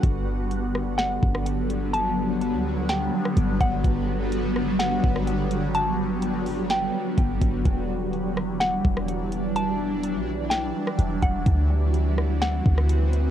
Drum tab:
HH |x---x---x---x-x-|x---x---x---x-x-|x---x---x---x-x-|x---x-o-x---x-x-|
SD |------r-o--r----|--------o--r----|------r-o--r----|--------o-------|
BD |o---------o-----|--------------o-|o---------o-----|------------o-o-|

HH |x---x---x---x-x-|x---x---x---x-x-|x---x---x---x-x-|
SD |------r-o--r----|--------o--r----|------r-o--r----|
BD |o---------o-----|--------------o-|o---------o-----|